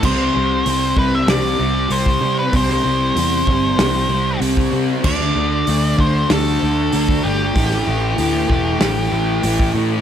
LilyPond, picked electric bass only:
\new Staff \with { instrumentName = "Picked electric bass" } { \clef bass \time 4/4 \key c \major \tempo 4 = 96 c,8 c,8 c,8 c,8 c,8 c,8 c,8 c8 | c,8 c,8 e,8 g,,8 c,8 c,8 c,8 c8 | d,8 d,8 d,8 d,8 d,8 d,8 d,8 g,,8 | a,,8 a,,8 d,8 e,,8 a,,8 a,,8 a,,8 a,8 | }